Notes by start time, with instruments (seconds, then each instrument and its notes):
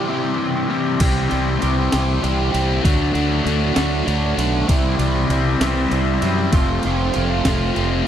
Already playing: string machine G4 C5 E5 B5
0.08 overdriven electric guitar C3 E3 G3 C4 E4 G4
0.70 overdriven electric guitar C3 E3 G3 C4 E4 G4
0.99 fingered electric bass C2, overdriven electric guitar C3 E3 G3 C4 E4 G4, string machine G4 C5 E5 C6, kick, crash, ride
1.29 fingered electric bass C2, overdriven electric guitar E3 G3 C4 E4 G4, ride
1.60 fingered electric bass C2, overdriven electric guitar C3 E3 G3 C4 G4, ride
1.64 overdriven electric guitar E4
1.91 fingered electric bass C2, overdriven electric guitar E3 G3 C4 E4 G4, snare, ride
2.21 fingered electric bass C2, overdriven electric guitar C3 E3 G3 C4 E4 G4, ride
2.52 fingered electric bass C2, overdriven electric guitar E3 G3 C4 E4 G4, ride
2.84 fingered electric bass D2, overdriven electric guitar D3 F#3 A3 D4 F#4, string machine A4 D5 F#5 D6, kick, ride
3.14 fingered electric bass D2, overdriven electric guitar D3 F#3 A3 D4 F#4, ride
3.44 fingered electric bass D2, overdriven electric guitar D3 F#3 A3 D4 F#4, ride
3.74 fingered electric bass D2, overdriven electric guitar D3 F#3 A3 D4 F#4, snare, ride
4.06 fingered electric bass D2, overdriven electric guitar D3 F#3 A3 D4 F#4, ride
4.38 fingered electric bass B1, overdriven electric guitar D3 F#3 A3 D4 F#4, ride
4.67 fingered electric bass C2, overdriven electric guitar C3 E3 G3 C4 E4, string machine G4 C6, kick, ride
4.72 string machine C5 E5
4.99 fingered electric bass C2, overdriven electric guitar E3 G3 C4 E4, ride
5.29 fingered electric bass C2, overdriven electric guitar C3 E3 G3 C4 E4, ride
5.61 fingered electric bass C2, overdriven electric guitar E3 G3 C4 E4, snare, ride
5.91 fingered electric bass C2, overdriven electric guitar C3 E3 G3 C4 E4, ride
6.22 fingered electric bass F#2, overdriven electric guitar E3 G3 C4 E4, ride
6.53 fingered electric bass F1, overdriven electric guitar F3 A3 C4 F4, string machine F5 A5, kick, ride
6.83 fingered electric bass F1, overdriven electric guitar F3 A3 C4 F4, ride
7.14 fingered electric bass F1, overdriven electric guitar F3 A3 C4 F4, ride
7.45 fingered electric bass F1, overdriven electric guitar F3 A3 C4 F4, kick, snare, ride
7.75 fingered electric bass F1, overdriven electric guitar F3 A3 C4 F4, ride